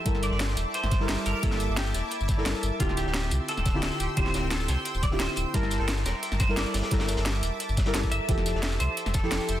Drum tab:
HH |x-x-x-x-x-x-x-x-|xxx-x-x-x-x-x-x-|x-x-x-x-x-x-x-x-|x-x-x-x-x-x-x-x-|
TB |--x--xx--xx--xx-|-xx--xx--xx--xx-|--x--xx--xx--xx-|--x--xx--xx--xx-|
SD |-ooooo---oooo---|-o--o-o---ooo---|-ooooo---oooo---|ooo-o-o---ooo---|
BD |o---------o-----|o---------o-----|o---------o-----|o---------o-----|

HH |x-x-x-x-x-x-x-xx|xxxxx-x-x-xxx-x-|x-x-x-x-x-x-x-x-|
TB |--x--xx--xx--xx-|--x--xx--xx--xx-|--x--xx--xx--xx-|
SD |-oooooo--oooo-oo|ooooo-----ooo---|-ooooo---oooo---|
BD |o---------o-----|o---------o--o--|o---------o-----|